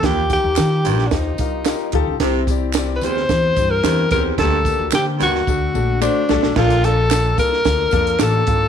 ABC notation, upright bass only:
X:1
M:4/4
L:1/16
Q:1/4=110
K:Bb
V:1 name="Upright bass" clef=bass
E,,3 E,, E,2 B,,,2 E,,2 C,,3 z D,, ^C,, | C,,6 D,,2 =E,,2 G,,2 E,,2 _E,,2 | D,,3 D,, D,2 D,,2 D,,2 B,,,3 z C,, =B,,, | B,,,6 C,,2 D,,2 F,,2 A,,,2 _A,,,2 |]